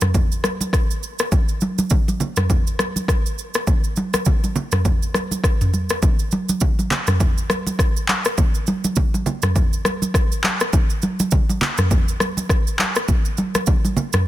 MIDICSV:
0, 0, Header, 1, 2, 480
1, 0, Start_track
1, 0, Tempo, 588235
1, 1077, Time_signature, 4, 2, 24, 8
1, 11651, End_track
2, 0, Start_track
2, 0, Title_t, "Drums"
2, 9, Note_on_c, 9, 82, 75
2, 13, Note_on_c, 9, 45, 88
2, 17, Note_on_c, 9, 37, 92
2, 18, Note_on_c, 9, 63, 69
2, 90, Note_off_c, 9, 82, 0
2, 95, Note_off_c, 9, 45, 0
2, 99, Note_off_c, 9, 37, 0
2, 100, Note_off_c, 9, 63, 0
2, 117, Note_on_c, 9, 82, 69
2, 118, Note_on_c, 9, 36, 106
2, 118, Note_on_c, 9, 64, 75
2, 199, Note_off_c, 9, 82, 0
2, 200, Note_off_c, 9, 36, 0
2, 200, Note_off_c, 9, 64, 0
2, 259, Note_on_c, 9, 82, 56
2, 341, Note_off_c, 9, 82, 0
2, 357, Note_on_c, 9, 63, 72
2, 358, Note_on_c, 9, 37, 93
2, 363, Note_on_c, 9, 82, 51
2, 439, Note_off_c, 9, 37, 0
2, 439, Note_off_c, 9, 63, 0
2, 445, Note_off_c, 9, 82, 0
2, 495, Note_on_c, 9, 63, 75
2, 499, Note_on_c, 9, 82, 92
2, 576, Note_off_c, 9, 63, 0
2, 581, Note_off_c, 9, 82, 0
2, 596, Note_on_c, 9, 36, 94
2, 599, Note_on_c, 9, 37, 98
2, 602, Note_on_c, 9, 82, 75
2, 677, Note_off_c, 9, 36, 0
2, 681, Note_off_c, 9, 37, 0
2, 683, Note_off_c, 9, 82, 0
2, 739, Note_on_c, 9, 82, 55
2, 821, Note_off_c, 9, 82, 0
2, 841, Note_on_c, 9, 82, 52
2, 922, Note_off_c, 9, 82, 0
2, 971, Note_on_c, 9, 82, 86
2, 978, Note_on_c, 9, 37, 101
2, 1052, Note_off_c, 9, 82, 0
2, 1060, Note_off_c, 9, 37, 0
2, 1075, Note_on_c, 9, 82, 77
2, 1077, Note_on_c, 9, 36, 121
2, 1077, Note_on_c, 9, 64, 78
2, 1157, Note_off_c, 9, 82, 0
2, 1159, Note_off_c, 9, 36, 0
2, 1159, Note_off_c, 9, 64, 0
2, 1212, Note_on_c, 9, 82, 47
2, 1294, Note_off_c, 9, 82, 0
2, 1312, Note_on_c, 9, 82, 46
2, 1321, Note_on_c, 9, 63, 82
2, 1393, Note_off_c, 9, 82, 0
2, 1403, Note_off_c, 9, 63, 0
2, 1456, Note_on_c, 9, 63, 83
2, 1456, Note_on_c, 9, 82, 91
2, 1537, Note_off_c, 9, 82, 0
2, 1538, Note_off_c, 9, 63, 0
2, 1549, Note_on_c, 9, 82, 78
2, 1556, Note_on_c, 9, 64, 81
2, 1560, Note_on_c, 9, 36, 87
2, 1631, Note_off_c, 9, 82, 0
2, 1637, Note_off_c, 9, 64, 0
2, 1641, Note_off_c, 9, 36, 0
2, 1699, Note_on_c, 9, 63, 73
2, 1702, Note_on_c, 9, 82, 48
2, 1780, Note_off_c, 9, 63, 0
2, 1784, Note_off_c, 9, 82, 0
2, 1796, Note_on_c, 9, 64, 79
2, 1799, Note_on_c, 9, 82, 49
2, 1878, Note_off_c, 9, 64, 0
2, 1880, Note_off_c, 9, 82, 0
2, 1929, Note_on_c, 9, 82, 75
2, 1933, Note_on_c, 9, 45, 90
2, 1937, Note_on_c, 9, 37, 96
2, 1939, Note_on_c, 9, 63, 75
2, 2011, Note_off_c, 9, 82, 0
2, 2015, Note_off_c, 9, 45, 0
2, 2019, Note_off_c, 9, 37, 0
2, 2020, Note_off_c, 9, 63, 0
2, 2038, Note_on_c, 9, 36, 106
2, 2038, Note_on_c, 9, 82, 71
2, 2039, Note_on_c, 9, 64, 73
2, 2119, Note_off_c, 9, 82, 0
2, 2120, Note_off_c, 9, 36, 0
2, 2120, Note_off_c, 9, 64, 0
2, 2180, Note_on_c, 9, 82, 57
2, 2261, Note_off_c, 9, 82, 0
2, 2278, Note_on_c, 9, 37, 98
2, 2278, Note_on_c, 9, 63, 72
2, 2283, Note_on_c, 9, 82, 53
2, 2359, Note_off_c, 9, 37, 0
2, 2359, Note_off_c, 9, 63, 0
2, 2365, Note_off_c, 9, 82, 0
2, 2415, Note_on_c, 9, 63, 72
2, 2420, Note_on_c, 9, 82, 96
2, 2497, Note_off_c, 9, 63, 0
2, 2501, Note_off_c, 9, 82, 0
2, 2516, Note_on_c, 9, 36, 92
2, 2520, Note_on_c, 9, 37, 101
2, 2522, Note_on_c, 9, 82, 73
2, 2598, Note_off_c, 9, 36, 0
2, 2601, Note_off_c, 9, 37, 0
2, 2604, Note_off_c, 9, 82, 0
2, 2660, Note_on_c, 9, 82, 57
2, 2742, Note_off_c, 9, 82, 0
2, 2761, Note_on_c, 9, 82, 50
2, 2843, Note_off_c, 9, 82, 0
2, 2891, Note_on_c, 9, 82, 83
2, 2899, Note_on_c, 9, 37, 105
2, 2973, Note_off_c, 9, 82, 0
2, 2981, Note_off_c, 9, 37, 0
2, 2996, Note_on_c, 9, 82, 75
2, 2997, Note_on_c, 9, 36, 123
2, 2997, Note_on_c, 9, 64, 72
2, 3077, Note_off_c, 9, 82, 0
2, 3079, Note_off_c, 9, 36, 0
2, 3079, Note_off_c, 9, 64, 0
2, 3132, Note_on_c, 9, 82, 46
2, 3214, Note_off_c, 9, 82, 0
2, 3232, Note_on_c, 9, 82, 47
2, 3242, Note_on_c, 9, 63, 85
2, 3314, Note_off_c, 9, 82, 0
2, 3323, Note_off_c, 9, 63, 0
2, 3376, Note_on_c, 9, 82, 94
2, 3377, Note_on_c, 9, 37, 99
2, 3378, Note_on_c, 9, 63, 84
2, 3458, Note_off_c, 9, 37, 0
2, 3458, Note_off_c, 9, 82, 0
2, 3460, Note_off_c, 9, 63, 0
2, 3470, Note_on_c, 9, 82, 78
2, 3477, Note_on_c, 9, 64, 79
2, 3480, Note_on_c, 9, 36, 86
2, 3551, Note_off_c, 9, 82, 0
2, 3559, Note_off_c, 9, 64, 0
2, 3561, Note_off_c, 9, 36, 0
2, 3620, Note_on_c, 9, 63, 72
2, 3622, Note_on_c, 9, 82, 48
2, 3702, Note_off_c, 9, 63, 0
2, 3704, Note_off_c, 9, 82, 0
2, 3718, Note_on_c, 9, 64, 81
2, 3719, Note_on_c, 9, 82, 49
2, 3799, Note_off_c, 9, 64, 0
2, 3800, Note_off_c, 9, 82, 0
2, 3849, Note_on_c, 9, 82, 76
2, 3853, Note_on_c, 9, 45, 89
2, 3858, Note_on_c, 9, 37, 94
2, 3859, Note_on_c, 9, 63, 72
2, 3931, Note_off_c, 9, 82, 0
2, 3935, Note_off_c, 9, 45, 0
2, 3939, Note_off_c, 9, 37, 0
2, 3941, Note_off_c, 9, 63, 0
2, 3958, Note_on_c, 9, 82, 71
2, 3959, Note_on_c, 9, 36, 104
2, 3959, Note_on_c, 9, 64, 74
2, 4040, Note_off_c, 9, 36, 0
2, 4040, Note_off_c, 9, 64, 0
2, 4040, Note_off_c, 9, 82, 0
2, 4100, Note_on_c, 9, 82, 54
2, 4182, Note_off_c, 9, 82, 0
2, 4198, Note_on_c, 9, 37, 92
2, 4198, Note_on_c, 9, 63, 70
2, 4203, Note_on_c, 9, 82, 50
2, 4280, Note_off_c, 9, 37, 0
2, 4280, Note_off_c, 9, 63, 0
2, 4285, Note_off_c, 9, 82, 0
2, 4335, Note_on_c, 9, 63, 74
2, 4340, Note_on_c, 9, 82, 90
2, 4417, Note_off_c, 9, 63, 0
2, 4421, Note_off_c, 9, 82, 0
2, 4436, Note_on_c, 9, 36, 92
2, 4439, Note_on_c, 9, 37, 101
2, 4442, Note_on_c, 9, 82, 72
2, 4518, Note_off_c, 9, 36, 0
2, 4521, Note_off_c, 9, 37, 0
2, 4523, Note_off_c, 9, 82, 0
2, 4579, Note_on_c, 9, 45, 93
2, 4580, Note_on_c, 9, 82, 56
2, 4660, Note_off_c, 9, 45, 0
2, 4662, Note_off_c, 9, 82, 0
2, 4680, Note_on_c, 9, 63, 60
2, 4681, Note_on_c, 9, 82, 52
2, 4761, Note_off_c, 9, 63, 0
2, 4763, Note_off_c, 9, 82, 0
2, 4811, Note_on_c, 9, 82, 85
2, 4818, Note_on_c, 9, 37, 105
2, 4892, Note_off_c, 9, 82, 0
2, 4900, Note_off_c, 9, 37, 0
2, 4915, Note_on_c, 9, 82, 83
2, 4917, Note_on_c, 9, 36, 122
2, 4917, Note_on_c, 9, 64, 76
2, 4997, Note_off_c, 9, 82, 0
2, 4999, Note_off_c, 9, 36, 0
2, 4999, Note_off_c, 9, 64, 0
2, 5052, Note_on_c, 9, 82, 49
2, 5134, Note_off_c, 9, 82, 0
2, 5152, Note_on_c, 9, 82, 50
2, 5161, Note_on_c, 9, 63, 83
2, 5234, Note_off_c, 9, 82, 0
2, 5243, Note_off_c, 9, 63, 0
2, 5296, Note_on_c, 9, 82, 96
2, 5297, Note_on_c, 9, 63, 81
2, 5377, Note_off_c, 9, 82, 0
2, 5379, Note_off_c, 9, 63, 0
2, 5389, Note_on_c, 9, 82, 81
2, 5395, Note_on_c, 9, 64, 87
2, 5400, Note_on_c, 9, 36, 91
2, 5471, Note_off_c, 9, 82, 0
2, 5477, Note_off_c, 9, 64, 0
2, 5481, Note_off_c, 9, 36, 0
2, 5539, Note_on_c, 9, 63, 76
2, 5542, Note_on_c, 9, 82, 49
2, 5620, Note_off_c, 9, 63, 0
2, 5624, Note_off_c, 9, 82, 0
2, 5637, Note_on_c, 9, 64, 84
2, 5638, Note_on_c, 9, 82, 52
2, 5641, Note_on_c, 9, 39, 94
2, 5718, Note_off_c, 9, 64, 0
2, 5720, Note_off_c, 9, 82, 0
2, 5723, Note_off_c, 9, 39, 0
2, 5769, Note_on_c, 9, 82, 81
2, 5773, Note_on_c, 9, 45, 94
2, 5777, Note_on_c, 9, 37, 100
2, 5778, Note_on_c, 9, 63, 73
2, 5850, Note_off_c, 9, 82, 0
2, 5854, Note_off_c, 9, 45, 0
2, 5859, Note_off_c, 9, 37, 0
2, 5860, Note_off_c, 9, 63, 0
2, 5877, Note_on_c, 9, 82, 76
2, 5878, Note_on_c, 9, 36, 113
2, 5879, Note_on_c, 9, 64, 78
2, 5959, Note_off_c, 9, 82, 0
2, 5960, Note_off_c, 9, 36, 0
2, 5960, Note_off_c, 9, 64, 0
2, 6020, Note_on_c, 9, 82, 56
2, 6102, Note_off_c, 9, 82, 0
2, 6118, Note_on_c, 9, 37, 102
2, 6118, Note_on_c, 9, 63, 77
2, 6123, Note_on_c, 9, 82, 53
2, 6199, Note_off_c, 9, 37, 0
2, 6200, Note_off_c, 9, 63, 0
2, 6205, Note_off_c, 9, 82, 0
2, 6255, Note_on_c, 9, 63, 80
2, 6259, Note_on_c, 9, 82, 98
2, 6337, Note_off_c, 9, 63, 0
2, 6341, Note_off_c, 9, 82, 0
2, 6356, Note_on_c, 9, 36, 98
2, 6359, Note_on_c, 9, 37, 101
2, 6361, Note_on_c, 9, 82, 81
2, 6437, Note_off_c, 9, 36, 0
2, 6441, Note_off_c, 9, 37, 0
2, 6443, Note_off_c, 9, 82, 0
2, 6500, Note_on_c, 9, 82, 58
2, 6581, Note_off_c, 9, 82, 0
2, 6597, Note_on_c, 9, 39, 92
2, 6600, Note_on_c, 9, 63, 60
2, 6601, Note_on_c, 9, 82, 53
2, 6678, Note_off_c, 9, 39, 0
2, 6681, Note_off_c, 9, 63, 0
2, 6683, Note_off_c, 9, 82, 0
2, 6731, Note_on_c, 9, 82, 89
2, 6739, Note_on_c, 9, 37, 105
2, 6812, Note_off_c, 9, 82, 0
2, 6820, Note_off_c, 9, 37, 0
2, 6836, Note_on_c, 9, 82, 83
2, 6837, Note_on_c, 9, 36, 122
2, 6838, Note_on_c, 9, 64, 79
2, 6917, Note_off_c, 9, 82, 0
2, 6919, Note_off_c, 9, 36, 0
2, 6919, Note_off_c, 9, 64, 0
2, 6973, Note_on_c, 9, 82, 48
2, 7054, Note_off_c, 9, 82, 0
2, 7072, Note_on_c, 9, 82, 49
2, 7081, Note_on_c, 9, 63, 87
2, 7154, Note_off_c, 9, 82, 0
2, 7163, Note_off_c, 9, 63, 0
2, 7216, Note_on_c, 9, 82, 99
2, 7217, Note_on_c, 9, 63, 86
2, 7298, Note_off_c, 9, 63, 0
2, 7298, Note_off_c, 9, 82, 0
2, 7309, Note_on_c, 9, 82, 82
2, 7316, Note_on_c, 9, 64, 86
2, 7320, Note_on_c, 9, 36, 86
2, 7391, Note_off_c, 9, 82, 0
2, 7398, Note_off_c, 9, 64, 0
2, 7401, Note_off_c, 9, 36, 0
2, 7459, Note_on_c, 9, 63, 76
2, 7463, Note_on_c, 9, 82, 50
2, 7541, Note_off_c, 9, 63, 0
2, 7544, Note_off_c, 9, 82, 0
2, 7557, Note_on_c, 9, 64, 83
2, 7559, Note_on_c, 9, 82, 52
2, 7638, Note_off_c, 9, 64, 0
2, 7640, Note_off_c, 9, 82, 0
2, 7689, Note_on_c, 9, 82, 81
2, 7693, Note_on_c, 9, 45, 95
2, 7697, Note_on_c, 9, 37, 96
2, 7699, Note_on_c, 9, 63, 76
2, 7771, Note_off_c, 9, 82, 0
2, 7775, Note_off_c, 9, 45, 0
2, 7779, Note_off_c, 9, 37, 0
2, 7781, Note_off_c, 9, 63, 0
2, 7798, Note_on_c, 9, 82, 74
2, 7799, Note_on_c, 9, 36, 115
2, 7799, Note_on_c, 9, 64, 77
2, 7879, Note_off_c, 9, 82, 0
2, 7880, Note_off_c, 9, 36, 0
2, 7881, Note_off_c, 9, 64, 0
2, 7940, Note_on_c, 9, 82, 58
2, 8022, Note_off_c, 9, 82, 0
2, 8038, Note_on_c, 9, 37, 99
2, 8039, Note_on_c, 9, 63, 73
2, 8043, Note_on_c, 9, 82, 55
2, 8119, Note_off_c, 9, 37, 0
2, 8120, Note_off_c, 9, 63, 0
2, 8125, Note_off_c, 9, 82, 0
2, 8175, Note_on_c, 9, 63, 79
2, 8180, Note_on_c, 9, 82, 96
2, 8257, Note_off_c, 9, 63, 0
2, 8262, Note_off_c, 9, 82, 0
2, 8276, Note_on_c, 9, 36, 102
2, 8280, Note_on_c, 9, 37, 103
2, 8282, Note_on_c, 9, 82, 77
2, 8358, Note_off_c, 9, 36, 0
2, 8361, Note_off_c, 9, 37, 0
2, 8364, Note_off_c, 9, 82, 0
2, 8420, Note_on_c, 9, 82, 61
2, 8502, Note_off_c, 9, 82, 0
2, 8517, Note_on_c, 9, 39, 93
2, 8520, Note_on_c, 9, 63, 63
2, 8521, Note_on_c, 9, 82, 54
2, 8598, Note_off_c, 9, 39, 0
2, 8602, Note_off_c, 9, 63, 0
2, 8603, Note_off_c, 9, 82, 0
2, 8651, Note_on_c, 9, 82, 87
2, 8659, Note_on_c, 9, 37, 111
2, 8733, Note_off_c, 9, 82, 0
2, 8741, Note_off_c, 9, 37, 0
2, 8756, Note_on_c, 9, 82, 83
2, 8758, Note_on_c, 9, 36, 124
2, 8758, Note_on_c, 9, 64, 78
2, 8837, Note_off_c, 9, 82, 0
2, 8839, Note_off_c, 9, 36, 0
2, 8840, Note_off_c, 9, 64, 0
2, 8893, Note_on_c, 9, 82, 47
2, 8975, Note_off_c, 9, 82, 0
2, 8992, Note_on_c, 9, 82, 49
2, 9001, Note_on_c, 9, 63, 85
2, 9074, Note_off_c, 9, 82, 0
2, 9083, Note_off_c, 9, 63, 0
2, 9136, Note_on_c, 9, 82, 95
2, 9137, Note_on_c, 9, 63, 85
2, 9218, Note_off_c, 9, 82, 0
2, 9219, Note_off_c, 9, 63, 0
2, 9230, Note_on_c, 9, 82, 82
2, 9237, Note_on_c, 9, 64, 81
2, 9240, Note_on_c, 9, 36, 88
2, 9311, Note_off_c, 9, 82, 0
2, 9318, Note_off_c, 9, 64, 0
2, 9321, Note_off_c, 9, 36, 0
2, 9379, Note_on_c, 9, 63, 78
2, 9383, Note_on_c, 9, 82, 52
2, 9461, Note_off_c, 9, 63, 0
2, 9464, Note_off_c, 9, 82, 0
2, 9477, Note_on_c, 9, 64, 86
2, 9479, Note_on_c, 9, 82, 52
2, 9482, Note_on_c, 9, 39, 101
2, 9558, Note_off_c, 9, 64, 0
2, 9561, Note_off_c, 9, 82, 0
2, 9564, Note_off_c, 9, 39, 0
2, 9610, Note_on_c, 9, 82, 82
2, 9614, Note_on_c, 9, 45, 96
2, 9618, Note_on_c, 9, 37, 102
2, 9618, Note_on_c, 9, 63, 77
2, 9691, Note_off_c, 9, 82, 0
2, 9695, Note_off_c, 9, 45, 0
2, 9699, Note_off_c, 9, 37, 0
2, 9700, Note_off_c, 9, 63, 0
2, 9718, Note_on_c, 9, 36, 116
2, 9718, Note_on_c, 9, 64, 75
2, 9718, Note_on_c, 9, 82, 73
2, 9799, Note_off_c, 9, 82, 0
2, 9800, Note_off_c, 9, 36, 0
2, 9800, Note_off_c, 9, 64, 0
2, 9860, Note_on_c, 9, 82, 60
2, 9942, Note_off_c, 9, 82, 0
2, 9958, Note_on_c, 9, 37, 97
2, 9958, Note_on_c, 9, 63, 75
2, 9963, Note_on_c, 9, 82, 56
2, 10039, Note_off_c, 9, 37, 0
2, 10039, Note_off_c, 9, 63, 0
2, 10045, Note_off_c, 9, 82, 0
2, 10095, Note_on_c, 9, 63, 78
2, 10099, Note_on_c, 9, 82, 101
2, 10176, Note_off_c, 9, 63, 0
2, 10181, Note_off_c, 9, 82, 0
2, 10196, Note_on_c, 9, 36, 102
2, 10200, Note_on_c, 9, 37, 103
2, 10202, Note_on_c, 9, 82, 80
2, 10278, Note_off_c, 9, 36, 0
2, 10281, Note_off_c, 9, 37, 0
2, 10283, Note_off_c, 9, 82, 0
2, 10340, Note_on_c, 9, 82, 58
2, 10422, Note_off_c, 9, 82, 0
2, 10437, Note_on_c, 9, 39, 95
2, 10439, Note_on_c, 9, 63, 61
2, 10441, Note_on_c, 9, 82, 54
2, 10518, Note_off_c, 9, 39, 0
2, 10521, Note_off_c, 9, 63, 0
2, 10523, Note_off_c, 9, 82, 0
2, 10571, Note_on_c, 9, 82, 88
2, 10579, Note_on_c, 9, 37, 108
2, 10653, Note_off_c, 9, 82, 0
2, 10661, Note_off_c, 9, 37, 0
2, 10676, Note_on_c, 9, 82, 80
2, 10677, Note_on_c, 9, 36, 127
2, 10677, Note_on_c, 9, 64, 76
2, 10758, Note_off_c, 9, 64, 0
2, 10758, Note_off_c, 9, 82, 0
2, 10759, Note_off_c, 9, 36, 0
2, 10813, Note_on_c, 9, 82, 49
2, 10894, Note_off_c, 9, 82, 0
2, 10912, Note_on_c, 9, 82, 49
2, 10920, Note_on_c, 9, 63, 84
2, 10994, Note_off_c, 9, 82, 0
2, 11002, Note_off_c, 9, 63, 0
2, 11056, Note_on_c, 9, 63, 86
2, 11056, Note_on_c, 9, 82, 97
2, 11057, Note_on_c, 9, 37, 98
2, 11138, Note_off_c, 9, 63, 0
2, 11138, Note_off_c, 9, 82, 0
2, 11139, Note_off_c, 9, 37, 0
2, 11149, Note_on_c, 9, 82, 84
2, 11155, Note_on_c, 9, 64, 83
2, 11160, Note_on_c, 9, 36, 91
2, 11231, Note_off_c, 9, 82, 0
2, 11237, Note_off_c, 9, 64, 0
2, 11241, Note_off_c, 9, 36, 0
2, 11298, Note_on_c, 9, 63, 76
2, 11302, Note_on_c, 9, 82, 52
2, 11379, Note_off_c, 9, 63, 0
2, 11384, Note_off_c, 9, 82, 0
2, 11396, Note_on_c, 9, 64, 81
2, 11399, Note_on_c, 9, 82, 51
2, 11477, Note_off_c, 9, 64, 0
2, 11480, Note_off_c, 9, 82, 0
2, 11529, Note_on_c, 9, 82, 79
2, 11533, Note_on_c, 9, 45, 92
2, 11537, Note_on_c, 9, 37, 103
2, 11538, Note_on_c, 9, 63, 75
2, 11611, Note_off_c, 9, 82, 0
2, 11615, Note_off_c, 9, 45, 0
2, 11619, Note_off_c, 9, 37, 0
2, 11620, Note_off_c, 9, 63, 0
2, 11651, End_track
0, 0, End_of_file